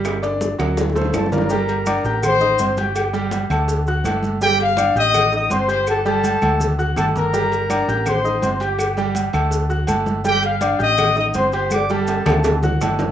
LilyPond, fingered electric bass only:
\new Staff \with { instrumentName = "Fingered electric bass" } { \clef bass \time 4/4 \key g \minor \tempo 4 = 164 g,,4. d,4. g,,4~ | g,,4. a,,4. g,,4~ | g,,4. d,4. g,,4~ | g,,4. a,,4. g,,4~ |
g,,4. d,4. g,,4~ | g,,4. a,,4. g,,4~ | g,,4. d,4. g,,4~ | g,,4. a,,4. g,,4~ |
g,,4. d,4. g,,4 | }